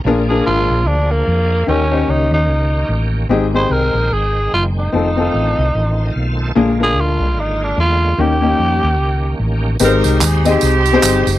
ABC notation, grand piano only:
X:1
M:4/4
L:1/16
Q:"Swing" 1/4=148
K:Ab
V:1 name="Grand piano"
[=DFAB] z [DFAB]4 z8 z2 | [DEGB] z [DEGcd]4 z8 z2 | [CEGA] z [CEGA]4 z8 z2 | [CEF=A] z [CEFA]4 z8 z2 |
[B,=DFA] z [B,DFB]4 z8 z2 | [B,DEG] z [B,DEG]4 z8 z2 | [A,CEG_c=c]3 z3 [CEGAe]3 z2 [CEGAc]3 z2 |]
V:2 name="Grand piano" clef=bass
B,,6 z8 z2 | E,6 z8 z2 | A,,6 z8 z2 | z16 |
B,,6 z8 z2 | E,6 z8 z2 | A,,6 z8 z2 |]